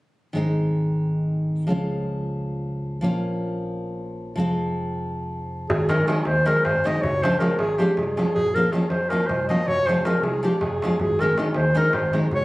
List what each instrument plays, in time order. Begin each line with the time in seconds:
0.33 fingered electric bass G#1, nylon-string guitar D#3 G#3 C4 D#4
1.67 fingered electric bass C#2, nylon-string guitar F3 G#3 C#4 F4
3.01 fingered electric bass A#1, nylon-string guitar F3 A#3 C#4 F4
4.36 fingered electric bass F1, nylon-string guitar F3 G#3 C4
4.40 nylon-string guitar F4
5.70 fingered electric bass G#1, clarinet G#4, darbuka dum
5.89 nylon-string guitar D#3 G#3 C4 D#4, clarinet A#4, darbuka tek
6.07 nylon-string guitar D#3 G#3 C4 D#4, clarinet G#4, darbuka tek
6.25 fingered electric bass D#2, clarinet C5, darbuka tek
6.45 nylon-string guitar D#3 G#3 C4 D#4, clarinet A#4, darbuka tek
6.65 fingered electric bass G#1, clarinet C5, darbuka tek, darbuka dum
6.84 nylon-string guitar D#3 G#3 C4 D#4, clarinet D#5, darbuka tek
7.02 fingered electric bass C#2, clarinet C#5, darbuka dum
7.23 nylon-string guitar F3 G#3 C#4 F4, clarinet C5, darbuka tek
7.39 nylon-string guitar F3 G#3 C#4 F4, clarinet A#4, darbuka tek
7.58 fingered electric bass G#1, clarinet G#4, darbuka tek
7.78 nylon-string guitar F3 G#3 C#4 F4, clarinet G4, darbuka tek
7.97 fingered electric bass C2, clarinet G#4, darbuka tek, darbuka dum
8.17 nylon-string guitar F3 G#3 C#4 F4, darbuka tek
8.35 fingered electric bass A#1, clarinet G#4, darbuka dum
8.55 nylon-string guitar F3 A#3 C#4 F4, clarinet A#4
8.72 nylon-string guitar F3 A#3 C#4 F4, clarinet G#4, darbuka tek
8.90 fingered electric bass F2, clarinet C5, darbuka tek
9.09 nylon-string guitar F3 A#3 C#4 F4, clarinet A#4, darbuka tek
9.27 fingered electric bass C2, clarinet C5, darbuka tek, darbuka dum
9.48 nylon-string guitar F3 A#3 C#4 F4, clarinet D#5, darbuka tek
9.67 fingered electric bass F1, clarinet C#5, darbuka dum
9.78 darbuka tek
9.86 nylon-string guitar F3 G#3 C4 F4, clarinet C5, darbuka tek
10.05 nylon-string guitar F3 G#3 C4 F4, clarinet A#4, darbuka tek
10.15 darbuka tek
10.23 fingered electric bass C2, clarinet G#4, darbuka tek
10.33 darbuka tek
10.43 nylon-string guitar F3 G#3 C4 F4, clarinet G4, darbuka tek
10.52 darbuka tek
10.61 fingered electric bass F1, clarinet G#4, darbuka tek, darbuka dum
10.72 darbuka tek
10.82 nylon-string guitar F3 G#3 C4 F4, darbuka tek
11.00 fingered electric bass G#1, clarinet G#4, darbuka dum
11.19 nylon-string guitar D#3 G#3 C4 D#4, clarinet A#4, darbuka tek
11.37 nylon-string guitar D#3 G#3 C4 D#4, clarinet G#4, darbuka tek
11.54 fingered electric bass D#2, clarinet C5, darbuka tek
11.75 nylon-string guitar D#3 G#3 C4 D#4, clarinet A#4, darbuka tek
11.93 fingered electric bass G#1, clarinet C5, darbuka tek, darbuka dum
12.13 nylon-string guitar D#3 G#3 C4 D#4, darbuka tek
12.31 fingered electric bass C#2, clarinet C#5, darbuka dum